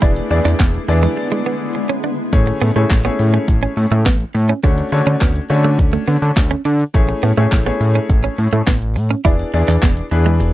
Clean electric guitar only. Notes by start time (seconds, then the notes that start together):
0.02 E4
0.31 muted clean electric guitar stroke
0.45 D4
0.60 B3
0.89 muted clean electric guitar stroke
1.03 G#3
1.17 muted clean electric guitar stroke
1.32 G#3
1.46 B3
1.75 muted clean electric guitar stroke
1.89 C#4
2.04 D4
2.47 muted clean electric guitar stroke
2.62 B3
2.76 A3
3.05 B3
3.19 muted clean electric guitar stroke
3.34 C#4
3.63 C#4
3.77 muted clean electric guitar stroke
3.92 A3
4.06 B3
4.35 muted clean electric guitar stroke
4.49 C#4
4.64 D4
4.92 muted clean electric guitar stroke
5.07 C#4
5.21 B3
5.50 muted clean electric guitar stroke
5.64 A3
5.79 muted clean electric guitar stroke
5.93 A3
6.08 B3
6.36 muted clean electric guitar stroke
6.51 C#4
6.65 D4
7.09 muted clean electric guitar stroke
7.23 B3
7.37 A3
7.66 B3
7.81 muted clean electric guitar stroke
7.95 C#4
8.24 C#4
8.38 muted clean electric guitar stroke
8.53 A3
8.67 B3
8.96 muted clean electric guitar stroke
9.11 C#4
9.25 E4
9.54 muted clean electric guitar stroke
9.68 D4
9.83 B3
10.11 muted clean electric guitar stroke
10.26 G#3
10.40 muted clean electric guitar stroke